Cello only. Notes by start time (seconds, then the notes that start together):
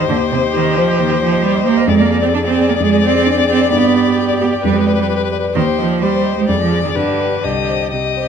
0.09 D3
0.31 C3
0.54 D#3
0.76 F3
0.99 D#3
1.21 F3
1.43 G3
1.66 A#3
1.88 G#3
2.00 A#3
2.22 C4
2.34 D4
2.45 C4
2.69 A#3
2.80 G#3
3.03 C4
3.49 C4
3.72 B3
4.41 B3
4.64 G3
4.76 G#3
4.99 G3
5.55 D#3
5.79 F3
6.01 G3
6.36 G#3
6.48 G3
6.60 F3
6.83 D#3
6.95 D3
7.43 D3
7.92 C3